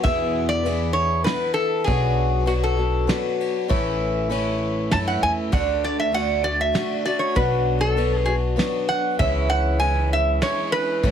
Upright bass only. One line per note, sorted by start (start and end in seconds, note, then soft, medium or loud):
0.04 1.23 E2 medium
1.88 3.06 B1 medium
3.71 4.89 A1 medium
4.93 5.20 F#2 medium
5.22 5.50 E2 medium
5.52 6.71 D2 medium
7.36 8.54 B1 medium
9.19 10.38 C#2 medium
11.03 11.11 A1 medium